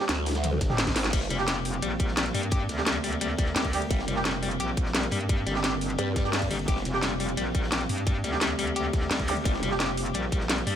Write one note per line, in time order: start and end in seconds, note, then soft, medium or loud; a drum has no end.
0.00 10.76 G3 medium
0.00 0.05 G3 medium
0.00 10.76 A#3 medium
0.00 1.09 D4 medium
0.00 0.05 D4 medium
0.00 0.05 G4 medium
0.00 1.11 C5 medium
0.00 snare soft
0.08 0.60 D2 loud
0.08 snare loud
0.08 closed hi-hat loud
0.08 ride medium
0.26 snare loud
0.26 open hi-hat medium
0.26 ride medium
0.31 snare medium
0.31 ride medium
0.35 snare loud
0.35 ride medium
0.44 closed hi-hat medium
0.44 high tom medium
0.44 ride loud
0.52 high tom medium
0.61 0.94 G1 loud
0.61 kick loud
0.61 snare medium
0.61 closed hi-hat medium
0.61 ride medium
0.70 0.74 G3 medium
0.70 0.74 D4 medium
0.70 0.74 G4 medium
0.70 snare medium
0.70 mid tom medium
0.78 snare loud
0.78 closed hi-hat medium
0.78 open hi-hat medium
0.87 kick medium
0.87 snare soft
0.87 snare medium
0.87 closed hi-hat soft
0.96 1.12 G#1 loud
0.96 snare loud
0.96 open hi-hat medium
0.96 ride medium
1.04 snare medium
1.04 closed hi-hat soft
1.13 1.29 G1 loud
1.13 1.19 G3 loud
1.13 10.76 C4 medium
1.13 6.66 A#4 medium
1.13 kick loud
1.13 closed hi-hat loud
1.13 crash medium
1.13 ride medium
1.21 snare medium
1.30 1.81 F1 loud
1.30 1.37 G3 loud
1.30 snare soft
1.30 closed hi-hat medium
1.30 ride medium
1.39 1.43 G3 loud
1.39 1.43 D4 medium
1.39 1.43 G4 loud
1.39 snare medium
1.47 1.57 G4 medium
1.47 snare loud
1.47 closed hi-hat loud
1.47 ride medium
1.65 open hi-hat medium
1.65 ride medium
1.74 closed hi-hat soft
1.82 2.33 A#1 loud
1.82 1.92 G3 medium
1.82 closed hi-hat loud
1.82 ride medium
1.99 2.06 G3 medium
1.99 kick loud
1.99 closed hi-hat medium
1.99 ride medium
2.08 snare soft
2.17 2.24 G3 loud
2.17 snare loud
2.17 closed hi-hat loud
2.17 ride medium
2.25 snare soft
2.25 closed hi-hat soft
2.34 2.68 G2 loud
2.34 2.41 G3 loud
2.34 open hi-hat medium
2.34 ride medium
2.43 closed hi-hat soft
2.51 2.61 G4 medium
2.51 kick loud
2.51 closed hi-hat loud
2.51 ride medium
2.69 3.54 D2 loud
2.69 snare medium
2.69 closed hi-hat medium
2.69 ride medium
2.78 2.82 G3 medium
2.78 2.82 D4 medium
2.78 2.82 G4 medium
2.78 snare medium
2.78 snare soft
2.86 2.96 G3 medium
2.86 snare loud
2.86 closed hi-hat loud
2.86 ride loud
3.04 3.10 G3 medium
3.04 open hi-hat medium
3.04 ride medium
3.13 closed hi-hat soft
3.21 3.28 G3 loud
3.21 closed hi-hat loud
3.21 ride medium
3.38 3.45 G3 loud
3.38 kick loud
3.38 snare soft
3.38 closed hi-hat medium
3.38 ride medium
3.46 snare soft
3.56 3.89 D2 loud
3.56 3.65 G4 medium
3.56 snare loud
3.56 closed hi-hat loud
3.56 open hi-hat medium
3.64 kick medium
3.64 snare soft
3.64 closed hi-hat soft
3.73 3.80 G3 medium
3.73 3.80 D4 medium
3.73 3.80 G4 loud
3.73 open hi-hat medium
3.73 ride medium
3.82 closed hi-hat soft
3.90 4.07 G1 loud
3.90 4.00 G3 medium
3.90 kick loud
3.90 closed hi-hat medium
3.90 ride medium
3.99 snare medium
4.08 4.59 F1 loud
4.08 4.14 G3 medium
4.08 snare soft
4.08 closed hi-hat medium
4.08 ride medium
4.16 4.21 G3 loud
4.16 4.21 D4 medium
4.16 4.21 G4 loud
4.16 snare medium
4.25 4.32 G3 loud
4.25 snare loud
4.25 closed hi-hat loud
4.25 ride medium
4.42 4.49 G3 loud
4.42 open hi-hat medium
4.42 ride medium
4.51 closed hi-hat soft
4.60 5.11 A#1 loud
4.60 4.70 G4 medium
4.60 closed hi-hat medium
4.60 ride medium
4.77 kick loud
4.77 closed hi-hat medium
4.77 ride medium
4.86 snare medium
4.94 5.04 G3 medium
4.94 snare loud
4.94 closed hi-hat loud
4.94 ride medium
5.03 snare soft
5.03 closed hi-hat soft
5.11 5.45 G2 loud
5.11 5.18 G3 medium
5.11 open hi-hat medium
5.11 ride medium
5.21 closed hi-hat soft
5.29 5.36 G3 loud
5.29 kick loud
5.29 closed hi-hat medium
5.29 ride medium
5.46 5.97 G1 loud
5.46 5.53 G3 loud
5.46 snare soft
5.46 closed hi-hat medium
5.46 ride medium
5.55 5.60 G3 medium
5.55 5.60 D4 medium
5.55 5.60 G4 medium
5.55 snare soft
5.55 snare medium
5.63 5.74 G4 medium
5.63 snare loud
5.63 closed hi-hat medium
5.63 ride medium
5.81 open hi-hat medium
5.81 ride medium
5.98 6.49 G2 loud
5.98 6.08 G3 medium
5.98 closed hi-hat medium
5.98 ride medium
6.16 6.22 G3 medium
6.16 kick loud
6.16 snare medium
6.16 closed hi-hat medium
6.16 ride medium
6.25 6.29 G3 medium
6.25 6.29 D4 medium
6.25 6.29 G4 medium
6.25 snare soft
6.33 6.40 G3 loud
6.33 snare loud
6.33 closed hi-hat medium
6.33 open hi-hat medium
6.42 kick medium
6.42 snare soft
6.42 closed hi-hat soft
6.51 6.67 G1 loud
6.51 6.57 G3 loud
6.51 open hi-hat medium
6.51 ride medium
6.59 closed hi-hat soft
6.68 6.84 G1 loud
6.68 6.78 G4 medium
6.68 10.76 G4 medium
6.68 kick loud
6.68 closed hi-hat medium
6.68 ride medium
6.76 snare medium
6.85 7.36 F1 loud
6.85 snare soft
6.85 closed hi-hat medium
6.85 ride medium
6.94 6.98 G3 loud
6.94 6.98 D4 medium
6.94 6.98 G4 loud
6.94 snare medium
7.02 7.12 G3 medium
7.02 snare loud
7.02 closed hi-hat medium
7.02 ride medium
7.20 7.26 G3 medium
7.20 open hi-hat medium
7.20 ride medium
7.29 closed hi-hat soft
7.37 7.88 A#1 loud
7.37 7.44 G3 loud
7.37 closed hi-hat medium
7.37 ride medium
7.55 7.61 G3 loud
7.55 kick loud
7.55 closed hi-hat medium
7.55 ride medium
7.64 snare medium
7.71 7.82 G4 medium
7.71 snare loud
7.71 closed hi-hat medium
7.71 ride medium
7.81 snare soft
7.81 closed hi-hat soft
7.89 8.23 G2 loud
7.89 open hi-hat medium
7.89 ride medium
7.98 closed hi-hat soft
8.07 8.16 G3 medium
8.07 kick loud
8.07 closed hi-hat medium
8.07 ride medium
8.24 9.09 D2 loud
8.24 8.30 G3 medium
8.24 snare soft
8.24 closed hi-hat medium
8.24 ride medium
8.32 8.37 G3 medium
8.32 8.37 D4 medium
8.32 8.37 G4 medium
8.32 snare medium
8.32 snare soft
8.41 8.48 G3 loud
8.41 snare loud
8.41 closed hi-hat medium
8.41 ride medium
8.59 8.65 G3 loud
8.59 open hi-hat medium
8.59 ride medium
8.67 closed hi-hat soft
8.76 8.86 G4 medium
8.76 closed hi-hat medium
8.76 ride medium
8.93 kick loud
8.93 snare soft
8.93 closed hi-hat medium
8.93 ride medium
9.01 snare soft
9.11 9.44 D2 loud
9.11 9.20 G3 medium
9.11 snare loud
9.11 closed hi-hat medium
9.11 open hi-hat medium
9.19 kick medium
9.19 snare soft
9.19 closed hi-hat soft
9.27 9.35 G3 medium
9.27 9.35 D4 medium
9.27 9.35 G4 loud
9.27 open hi-hat medium
9.27 ride medium
9.27 zap medium
9.37 closed hi-hat soft
9.45 9.61 G1 loud
9.45 9.52 G3 loud
9.45 kick loud
9.45 closed hi-hat medium
9.45 ride medium
9.54 snare medium
9.63 10.13 F1 loud
9.63 9.69 G3 loud
9.63 snare soft
9.63 closed hi-hat medium
9.63 ride medium
9.71 9.76 G3 loud
9.71 9.76 D4 medium
9.71 9.76 G4 loud
9.71 snare medium
9.80 9.90 G4 medium
9.80 snare loud
9.80 closed hi-hat medium
9.80 ride medium
9.97 open hi-hat medium
9.97 ride medium
10.06 closed hi-hat soft
10.14 10.65 A#1 loud
10.14 10.24 G3 medium
10.14 closed hi-hat medium
10.14 ride medium
10.32 10.39 G3 medium
10.32 kick loud
10.32 closed hi-hat medium
10.32 ride medium
10.41 snare medium
10.50 10.56 G3 loud
10.50 snare loud
10.50 closed hi-hat medium
10.50 ride medium
10.57 snare soft
10.57 closed hi-hat soft
10.67 10.76 G2 loud
10.67 10.73 G3 loud
10.67 open hi-hat medium